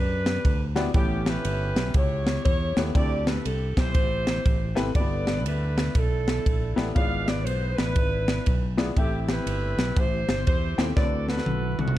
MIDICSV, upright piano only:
0, 0, Header, 1, 2, 480
1, 0, Start_track
1, 0, Tempo, 500835
1, 906, Time_signature, 4, 2, 24, 8
1, 11482, End_track
2, 0, Start_track
2, 0, Title_t, "Upright piano"
2, 0, Program_c, 0, 0
2, 724, Note_on_c, 0, 59, 94
2, 724, Note_on_c, 0, 66, 92
2, 727, Note_on_c, 0, 64, 81
2, 729, Note_on_c, 0, 67, 95
2, 730, Note_on_c, 0, 74, 104
2, 844, Note_off_c, 0, 59, 0
2, 844, Note_off_c, 0, 66, 0
2, 845, Note_off_c, 0, 64, 0
2, 847, Note_off_c, 0, 67, 0
2, 847, Note_off_c, 0, 74, 0
2, 901, Note_on_c, 0, 59, 69
2, 901, Note_on_c, 0, 64, 69
2, 902, Note_on_c, 0, 45, 66
2, 907, Note_on_c, 0, 69, 71
2, 908, Note_on_c, 0, 67, 65
2, 908, Note_on_c, 0, 73, 75
2, 1589, Note_off_c, 0, 59, 0
2, 1589, Note_off_c, 0, 64, 0
2, 1592, Note_off_c, 0, 67, 0
2, 1592, Note_off_c, 0, 69, 0
2, 1592, Note_off_c, 0, 73, 0
2, 1653, Note_off_c, 0, 45, 0
2, 2653, Note_on_c, 0, 67, 74
2, 2656, Note_on_c, 0, 59, 81
2, 2656, Note_on_c, 0, 64, 73
2, 2656, Note_on_c, 0, 69, 70
2, 2656, Note_on_c, 0, 73, 81
2, 2769, Note_off_c, 0, 67, 0
2, 2771, Note_off_c, 0, 59, 0
2, 2771, Note_off_c, 0, 64, 0
2, 2771, Note_off_c, 0, 69, 0
2, 2771, Note_off_c, 0, 73, 0
2, 2820, Note_on_c, 0, 64, 68
2, 2822, Note_on_c, 0, 60, 78
2, 2822, Note_on_c, 0, 67, 66
2, 2824, Note_on_c, 0, 50, 63
2, 2825, Note_on_c, 0, 74, 83
2, 2832, Note_on_c, 0, 69, 69
2, 3509, Note_off_c, 0, 64, 0
2, 3510, Note_off_c, 0, 60, 0
2, 3510, Note_off_c, 0, 67, 0
2, 3512, Note_off_c, 0, 74, 0
2, 3515, Note_off_c, 0, 69, 0
2, 3574, Note_off_c, 0, 50, 0
2, 4555, Note_on_c, 0, 64, 88
2, 4562, Note_on_c, 0, 60, 99
2, 4562, Note_on_c, 0, 67, 83
2, 4563, Note_on_c, 0, 71, 103
2, 4564, Note_on_c, 0, 69, 86
2, 4681, Note_off_c, 0, 64, 0
2, 4684, Note_off_c, 0, 60, 0
2, 4684, Note_off_c, 0, 67, 0
2, 4685, Note_off_c, 0, 69, 0
2, 4685, Note_off_c, 0, 71, 0
2, 4738, Note_on_c, 0, 57, 56
2, 4738, Note_on_c, 0, 69, 66
2, 4741, Note_on_c, 0, 43, 63
2, 4743, Note_on_c, 0, 64, 64
2, 4743, Note_on_c, 0, 67, 70
2, 4744, Note_on_c, 0, 74, 80
2, 4793, Note_on_c, 0, 59, 74
2, 4817, Note_off_c, 0, 57, 0
2, 5429, Note_off_c, 0, 69, 0
2, 5431, Note_off_c, 0, 64, 0
2, 5431, Note_off_c, 0, 67, 0
2, 5432, Note_off_c, 0, 74, 0
2, 5456, Note_off_c, 0, 59, 0
2, 5493, Note_off_c, 0, 43, 0
2, 6480, Note_on_c, 0, 59, 95
2, 6484, Note_on_c, 0, 64, 87
2, 6485, Note_on_c, 0, 69, 90
2, 6490, Note_on_c, 0, 67, 86
2, 6492, Note_on_c, 0, 74, 95
2, 6604, Note_off_c, 0, 59, 0
2, 6605, Note_off_c, 0, 64, 0
2, 6606, Note_off_c, 0, 69, 0
2, 6608, Note_off_c, 0, 67, 0
2, 6610, Note_off_c, 0, 74, 0
2, 6659, Note_on_c, 0, 59, 73
2, 6660, Note_on_c, 0, 64, 64
2, 6665, Note_on_c, 0, 65, 66
2, 6665, Note_on_c, 0, 68, 61
2, 6667, Note_on_c, 0, 44, 68
2, 6668, Note_on_c, 0, 73, 61
2, 6723, Note_on_c, 0, 74, 77
2, 6742, Note_off_c, 0, 73, 0
2, 7349, Note_off_c, 0, 59, 0
2, 7350, Note_off_c, 0, 64, 0
2, 7352, Note_off_c, 0, 65, 0
2, 7352, Note_off_c, 0, 68, 0
2, 7381, Note_off_c, 0, 74, 0
2, 7416, Note_off_c, 0, 44, 0
2, 8409, Note_on_c, 0, 59, 96
2, 8412, Note_on_c, 0, 64, 88
2, 8412, Note_on_c, 0, 65, 87
2, 8412, Note_on_c, 0, 68, 88
2, 8414, Note_on_c, 0, 74, 105
2, 8528, Note_off_c, 0, 59, 0
2, 8529, Note_off_c, 0, 64, 0
2, 8530, Note_off_c, 0, 65, 0
2, 8530, Note_off_c, 0, 68, 0
2, 8530, Note_off_c, 0, 74, 0
2, 8589, Note_on_c, 0, 60, 71
2, 8594, Note_on_c, 0, 64, 69
2, 8596, Note_on_c, 0, 69, 66
2, 8598, Note_on_c, 0, 45, 71
2, 8599, Note_on_c, 0, 67, 68
2, 8604, Note_on_c, 0, 76, 86
2, 9274, Note_off_c, 0, 60, 0
2, 9276, Note_off_c, 0, 64, 0
2, 9278, Note_off_c, 0, 69, 0
2, 9279, Note_off_c, 0, 67, 0
2, 9281, Note_off_c, 0, 76, 0
2, 9341, Note_off_c, 0, 45, 0
2, 10330, Note_on_c, 0, 69, 71
2, 10331, Note_on_c, 0, 60, 82
2, 10331, Note_on_c, 0, 64, 75
2, 10332, Note_on_c, 0, 79, 90
2, 10337, Note_on_c, 0, 67, 72
2, 10449, Note_off_c, 0, 60, 0
2, 10449, Note_off_c, 0, 64, 0
2, 10449, Note_off_c, 0, 69, 0
2, 10449, Note_off_c, 0, 79, 0
2, 10452, Note_off_c, 0, 67, 0
2, 10508, Note_on_c, 0, 60, 77
2, 10510, Note_on_c, 0, 66, 68
2, 10511, Note_on_c, 0, 64, 63
2, 10514, Note_on_c, 0, 73, 67
2, 10515, Note_on_c, 0, 50, 61
2, 10515, Note_on_c, 0, 71, 68
2, 10569, Note_on_c, 0, 74, 84
2, 10585, Note_off_c, 0, 73, 0
2, 11193, Note_off_c, 0, 60, 0
2, 11194, Note_off_c, 0, 66, 0
2, 11195, Note_off_c, 0, 64, 0
2, 11197, Note_off_c, 0, 71, 0
2, 11224, Note_off_c, 0, 74, 0
2, 11260, Note_off_c, 0, 50, 0
2, 11482, End_track
0, 0, End_of_file